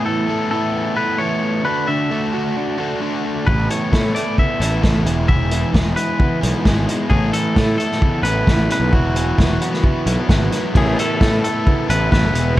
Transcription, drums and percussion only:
0, 0, Header, 1, 2, 480
1, 0, Start_track
1, 0, Tempo, 454545
1, 1745, Time_signature, 4, 2, 24, 8
1, 13305, End_track
2, 0, Start_track
2, 0, Title_t, "Drums"
2, 3670, Note_on_c, 9, 36, 83
2, 3776, Note_off_c, 9, 36, 0
2, 3910, Note_on_c, 9, 42, 61
2, 4015, Note_off_c, 9, 42, 0
2, 4149, Note_on_c, 9, 36, 100
2, 4156, Note_on_c, 9, 38, 110
2, 4255, Note_off_c, 9, 36, 0
2, 4261, Note_off_c, 9, 38, 0
2, 4389, Note_on_c, 9, 42, 65
2, 4495, Note_off_c, 9, 42, 0
2, 4628, Note_on_c, 9, 36, 89
2, 4733, Note_off_c, 9, 36, 0
2, 4873, Note_on_c, 9, 42, 73
2, 4978, Note_off_c, 9, 42, 0
2, 5106, Note_on_c, 9, 36, 89
2, 5110, Note_on_c, 9, 38, 93
2, 5212, Note_off_c, 9, 36, 0
2, 5215, Note_off_c, 9, 38, 0
2, 5347, Note_on_c, 9, 42, 66
2, 5453, Note_off_c, 9, 42, 0
2, 5586, Note_on_c, 9, 36, 94
2, 5691, Note_off_c, 9, 36, 0
2, 5821, Note_on_c, 9, 42, 68
2, 5926, Note_off_c, 9, 42, 0
2, 6067, Note_on_c, 9, 36, 96
2, 6073, Note_on_c, 9, 38, 107
2, 6172, Note_off_c, 9, 36, 0
2, 6179, Note_off_c, 9, 38, 0
2, 6303, Note_on_c, 9, 42, 62
2, 6409, Note_off_c, 9, 42, 0
2, 6544, Note_on_c, 9, 36, 96
2, 6650, Note_off_c, 9, 36, 0
2, 6791, Note_on_c, 9, 42, 71
2, 6896, Note_off_c, 9, 42, 0
2, 7027, Note_on_c, 9, 36, 96
2, 7029, Note_on_c, 9, 38, 92
2, 7132, Note_off_c, 9, 36, 0
2, 7135, Note_off_c, 9, 38, 0
2, 7271, Note_on_c, 9, 42, 68
2, 7377, Note_off_c, 9, 42, 0
2, 7506, Note_on_c, 9, 36, 85
2, 7612, Note_off_c, 9, 36, 0
2, 7743, Note_on_c, 9, 42, 61
2, 7849, Note_off_c, 9, 42, 0
2, 7987, Note_on_c, 9, 36, 92
2, 7990, Note_on_c, 9, 38, 96
2, 8093, Note_off_c, 9, 36, 0
2, 8096, Note_off_c, 9, 38, 0
2, 8233, Note_on_c, 9, 42, 61
2, 8339, Note_off_c, 9, 42, 0
2, 8361, Note_on_c, 9, 38, 30
2, 8466, Note_off_c, 9, 38, 0
2, 8469, Note_on_c, 9, 36, 104
2, 8575, Note_off_c, 9, 36, 0
2, 8707, Note_on_c, 9, 42, 67
2, 8813, Note_off_c, 9, 42, 0
2, 8948, Note_on_c, 9, 36, 87
2, 8953, Note_on_c, 9, 38, 86
2, 9054, Note_off_c, 9, 36, 0
2, 9058, Note_off_c, 9, 38, 0
2, 9191, Note_on_c, 9, 42, 69
2, 9197, Note_on_c, 9, 38, 26
2, 9297, Note_off_c, 9, 42, 0
2, 9303, Note_off_c, 9, 38, 0
2, 9428, Note_on_c, 9, 36, 83
2, 9533, Note_off_c, 9, 36, 0
2, 9671, Note_on_c, 9, 42, 65
2, 9776, Note_off_c, 9, 42, 0
2, 9910, Note_on_c, 9, 36, 103
2, 9923, Note_on_c, 9, 38, 100
2, 10016, Note_off_c, 9, 36, 0
2, 10029, Note_off_c, 9, 38, 0
2, 10153, Note_on_c, 9, 42, 71
2, 10258, Note_off_c, 9, 42, 0
2, 10279, Note_on_c, 9, 38, 27
2, 10384, Note_off_c, 9, 38, 0
2, 10387, Note_on_c, 9, 36, 94
2, 10493, Note_off_c, 9, 36, 0
2, 10629, Note_on_c, 9, 42, 70
2, 10734, Note_off_c, 9, 42, 0
2, 10870, Note_on_c, 9, 36, 93
2, 10874, Note_on_c, 9, 38, 89
2, 10975, Note_off_c, 9, 36, 0
2, 10979, Note_off_c, 9, 38, 0
2, 11111, Note_on_c, 9, 42, 69
2, 11118, Note_on_c, 9, 38, 27
2, 11217, Note_off_c, 9, 42, 0
2, 11223, Note_off_c, 9, 38, 0
2, 11354, Note_on_c, 9, 36, 101
2, 11357, Note_on_c, 9, 49, 75
2, 11460, Note_off_c, 9, 36, 0
2, 11463, Note_off_c, 9, 49, 0
2, 11603, Note_on_c, 9, 42, 75
2, 11709, Note_off_c, 9, 42, 0
2, 11838, Note_on_c, 9, 36, 113
2, 11847, Note_on_c, 9, 38, 105
2, 11944, Note_off_c, 9, 36, 0
2, 11953, Note_off_c, 9, 38, 0
2, 12084, Note_on_c, 9, 42, 67
2, 12189, Note_off_c, 9, 42, 0
2, 12321, Note_on_c, 9, 36, 101
2, 12427, Note_off_c, 9, 36, 0
2, 12564, Note_on_c, 9, 42, 74
2, 12670, Note_off_c, 9, 42, 0
2, 12801, Note_on_c, 9, 36, 99
2, 12812, Note_on_c, 9, 38, 105
2, 12906, Note_off_c, 9, 36, 0
2, 12917, Note_off_c, 9, 38, 0
2, 13043, Note_on_c, 9, 42, 72
2, 13149, Note_off_c, 9, 42, 0
2, 13305, End_track
0, 0, End_of_file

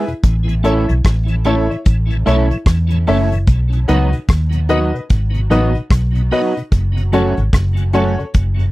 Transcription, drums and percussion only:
0, 0, Header, 1, 2, 480
1, 0, Start_track
1, 0, Tempo, 809717
1, 139, Time_signature, 4, 2, 24, 8
1, 5166, End_track
2, 0, Start_track
2, 0, Title_t, "Drums"
2, 50, Note_on_c, 9, 42, 48
2, 109, Note_off_c, 9, 42, 0
2, 138, Note_on_c, 9, 42, 84
2, 140, Note_on_c, 9, 36, 106
2, 197, Note_off_c, 9, 42, 0
2, 199, Note_off_c, 9, 36, 0
2, 288, Note_on_c, 9, 42, 55
2, 347, Note_off_c, 9, 42, 0
2, 381, Note_on_c, 9, 42, 78
2, 440, Note_off_c, 9, 42, 0
2, 528, Note_on_c, 9, 42, 56
2, 587, Note_off_c, 9, 42, 0
2, 618, Note_on_c, 9, 42, 91
2, 620, Note_on_c, 9, 36, 106
2, 627, Note_on_c, 9, 37, 121
2, 677, Note_off_c, 9, 42, 0
2, 679, Note_off_c, 9, 36, 0
2, 686, Note_off_c, 9, 37, 0
2, 759, Note_on_c, 9, 42, 49
2, 819, Note_off_c, 9, 42, 0
2, 856, Note_on_c, 9, 42, 75
2, 916, Note_off_c, 9, 42, 0
2, 1013, Note_on_c, 9, 42, 39
2, 1073, Note_off_c, 9, 42, 0
2, 1099, Note_on_c, 9, 42, 85
2, 1103, Note_on_c, 9, 36, 109
2, 1158, Note_off_c, 9, 42, 0
2, 1163, Note_off_c, 9, 36, 0
2, 1246, Note_on_c, 9, 42, 46
2, 1305, Note_off_c, 9, 42, 0
2, 1344, Note_on_c, 9, 42, 72
2, 1403, Note_off_c, 9, 42, 0
2, 1486, Note_on_c, 9, 42, 49
2, 1545, Note_off_c, 9, 42, 0
2, 1577, Note_on_c, 9, 36, 107
2, 1581, Note_on_c, 9, 37, 89
2, 1585, Note_on_c, 9, 42, 87
2, 1636, Note_off_c, 9, 36, 0
2, 1641, Note_off_c, 9, 37, 0
2, 1644, Note_off_c, 9, 42, 0
2, 1721, Note_on_c, 9, 42, 55
2, 1780, Note_off_c, 9, 42, 0
2, 1820, Note_on_c, 9, 46, 70
2, 1879, Note_off_c, 9, 46, 0
2, 1969, Note_on_c, 9, 42, 52
2, 2028, Note_off_c, 9, 42, 0
2, 2057, Note_on_c, 9, 42, 84
2, 2060, Note_on_c, 9, 36, 103
2, 2116, Note_off_c, 9, 42, 0
2, 2119, Note_off_c, 9, 36, 0
2, 2208, Note_on_c, 9, 42, 57
2, 2268, Note_off_c, 9, 42, 0
2, 2301, Note_on_c, 9, 42, 82
2, 2361, Note_off_c, 9, 42, 0
2, 2447, Note_on_c, 9, 42, 53
2, 2506, Note_off_c, 9, 42, 0
2, 2539, Note_on_c, 9, 42, 93
2, 2541, Note_on_c, 9, 36, 109
2, 2548, Note_on_c, 9, 37, 118
2, 2598, Note_off_c, 9, 42, 0
2, 2601, Note_off_c, 9, 36, 0
2, 2607, Note_off_c, 9, 37, 0
2, 2681, Note_on_c, 9, 42, 59
2, 2740, Note_off_c, 9, 42, 0
2, 2779, Note_on_c, 9, 42, 74
2, 2839, Note_off_c, 9, 42, 0
2, 2935, Note_on_c, 9, 42, 40
2, 2994, Note_off_c, 9, 42, 0
2, 3021, Note_on_c, 9, 42, 84
2, 3025, Note_on_c, 9, 36, 112
2, 3080, Note_off_c, 9, 42, 0
2, 3085, Note_off_c, 9, 36, 0
2, 3167, Note_on_c, 9, 42, 46
2, 3226, Note_off_c, 9, 42, 0
2, 3267, Note_on_c, 9, 42, 80
2, 3326, Note_off_c, 9, 42, 0
2, 3409, Note_on_c, 9, 42, 46
2, 3468, Note_off_c, 9, 42, 0
2, 3500, Note_on_c, 9, 36, 109
2, 3506, Note_on_c, 9, 37, 100
2, 3509, Note_on_c, 9, 42, 99
2, 3560, Note_off_c, 9, 36, 0
2, 3566, Note_off_c, 9, 37, 0
2, 3569, Note_off_c, 9, 42, 0
2, 3646, Note_on_c, 9, 42, 51
2, 3705, Note_off_c, 9, 42, 0
2, 3745, Note_on_c, 9, 46, 65
2, 3804, Note_off_c, 9, 46, 0
2, 3895, Note_on_c, 9, 42, 49
2, 3955, Note_off_c, 9, 42, 0
2, 3982, Note_on_c, 9, 42, 88
2, 3983, Note_on_c, 9, 36, 99
2, 4042, Note_off_c, 9, 36, 0
2, 4042, Note_off_c, 9, 42, 0
2, 4132, Note_on_c, 9, 42, 57
2, 4192, Note_off_c, 9, 42, 0
2, 4225, Note_on_c, 9, 42, 87
2, 4284, Note_off_c, 9, 42, 0
2, 4370, Note_on_c, 9, 42, 49
2, 4429, Note_off_c, 9, 42, 0
2, 4463, Note_on_c, 9, 42, 85
2, 4464, Note_on_c, 9, 36, 117
2, 4472, Note_on_c, 9, 37, 122
2, 4522, Note_off_c, 9, 42, 0
2, 4523, Note_off_c, 9, 36, 0
2, 4531, Note_off_c, 9, 37, 0
2, 4605, Note_on_c, 9, 42, 57
2, 4664, Note_off_c, 9, 42, 0
2, 4702, Note_on_c, 9, 42, 70
2, 4761, Note_off_c, 9, 42, 0
2, 4858, Note_on_c, 9, 42, 39
2, 4917, Note_off_c, 9, 42, 0
2, 4943, Note_on_c, 9, 42, 85
2, 4948, Note_on_c, 9, 36, 104
2, 5002, Note_off_c, 9, 42, 0
2, 5007, Note_off_c, 9, 36, 0
2, 5091, Note_on_c, 9, 42, 47
2, 5151, Note_off_c, 9, 42, 0
2, 5166, End_track
0, 0, End_of_file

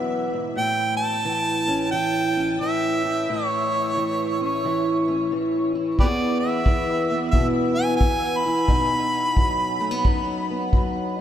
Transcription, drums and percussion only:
0, 0, Header, 1, 2, 480
1, 0, Start_track
1, 0, Key_signature, 4, "major"
1, 0, Tempo, 677966
1, 404, Time_signature, 4, 2, 24, 8
1, 7935, End_track
2, 0, Start_track
2, 0, Title_t, "Drums"
2, 4239, Note_on_c, 9, 36, 57
2, 4310, Note_off_c, 9, 36, 0
2, 4715, Note_on_c, 9, 36, 61
2, 4785, Note_off_c, 9, 36, 0
2, 5190, Note_on_c, 9, 36, 61
2, 5261, Note_off_c, 9, 36, 0
2, 5669, Note_on_c, 9, 36, 66
2, 5740, Note_off_c, 9, 36, 0
2, 6148, Note_on_c, 9, 36, 60
2, 6219, Note_off_c, 9, 36, 0
2, 6632, Note_on_c, 9, 36, 62
2, 6702, Note_off_c, 9, 36, 0
2, 7114, Note_on_c, 9, 36, 60
2, 7185, Note_off_c, 9, 36, 0
2, 7596, Note_on_c, 9, 36, 65
2, 7667, Note_off_c, 9, 36, 0
2, 7935, End_track
0, 0, End_of_file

